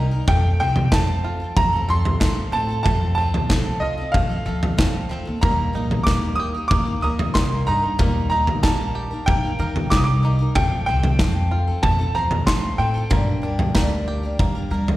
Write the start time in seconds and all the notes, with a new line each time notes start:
Already playing: C2 G3 A#3 D#4 A#4
0.00 D#4 A#4
0.11 A#3 D#4 A#4
0.28 F2 F3 A3 C4 F4 A4 G5, kick, floor tom
0.60 C2 F3 C4 F4 A4 G5
0.76 floor tom
0.92 F2 F3 A3 C4 F4 A4 A5, kick, snare, clap
1.24 F4
1.40 C4 F4 A4
1.56 F2 A3 A#5, kick, floor tom
1.73 C4 F4 A4
1.89 F2 F3 C4 F4 A4 C6
2.05 floor tom
2.20 D2 F3 A3 C4 F4 A4, kick, snare, clap
2.52 A2 F3 C4 F4 A5
2.57 A4
2.69 C4 F4 A4
2.83 F2 F3 A3 C4 A5, kick, floor tom
2.87 F4 A4
3.15 F3 C4 A5
3.20 F4 A4
3.34 floor tom
3.49 C2 F3 A3 C4 F4 A4, kick, snare, clap
3.80 F4 D#5
3.98 C4 F4 A4
4.12 F3 A3 F5, kick, floor tom
4.29 C4 F4 A4
4.46 F3 C4 F4 A4
4.63 floor tom
4.78 F2 F3 A3 C4 F4 A4, kick, snare, clap
5.09 F2 F3 C4 F4 A4
5.25 D#2 C4 F4 A4
5.41 D#2 D#3 G3 A#3 D#4 A#4 A#5, kick, floor tom
5.73 A#1 G3 A#3 D#4 A#4
5.91 floor tom
6.03 D#2 D#3 G3 A#3 D6, kick, snare
6.08 A#3 D#4 A#4, clap
6.36 G4 D#6
6.54 A#3 D#4 A#4
6.68 D#2 A#3 D6, kick, floor tom
6.85 A#3 D#4 A#4
7.01 D#2 G3 A#3 D#4 A#4 D#6
7.19 floor tom
7.34 C2 D#3 G3 A#3 D#4 A#4 C6, kick, snare, clap
7.66 G2 G3 A#3 D#4 A#4 A#5
7.82 A#3 D#4 A#4
7.99 D#2 D#3 G3 A#3 D#4 A#4, kick, floor tom
8.30 G3 A#3 D#4 A#4 A#5
8.47 floor tom
8.63 A#1 D#3 G3 A#3 D#4 A#4 A5, kick, snare, clap
8.95 G4
9.11 A#3 D#4 A#4
9.26 D#3 A#3 G5, kick, floor tom
9.43 A#3 D#4 A#4
9.59 D#3 G3 A#3 D#4 A#4
9.76 floor tom
9.90 C2 D#3 G3 A#3 D#4 A#4 D6, kick, snare, clap
9.97 D#6
10.04 D6
10.23 G3 A#3 D#4 A#4
10.39 A#3 D#4 A#4
10.55 F2 F3 A3 C4 F4 A4 G5, kick, floor tom
10.86 C2 F3 C4 F4 G5
10.90 A4
11.03 floor tom
11.19 F2 F3 A3 C4 F4 A4, kick, snare, clap
11.51 F4
11.67 C4 F4 A4
11.83 F2 A3 A5, kick, floor tom
11.99 C4 F4 A4
12.15 F2 F3 C4 F4 C5 A#5
12.31 floor tom
12.47 D2 F3 A3 C4 F4 A4 C6, kick, snare, clap
12.78 A2 F3 C4 F4 A4 G5
12.94 C4 F4 A4
13.10 G2 D3 G3 A#3 D4 A#4, kick, floor tom
13.42 G3 A#3 D4 A#4
13.59 floor tom
13.74 D2 G2 D3 G3 A#3 D4 A#4, kick, snare, clap
14.08 G4
14.23 G3 A#3 D4 A#4
14.39 G3 A#3, kick, floor tom
14.55 G3 A#3 D4 A#4
14.71 G3 A#3 D4 A#4
14.88 floor tom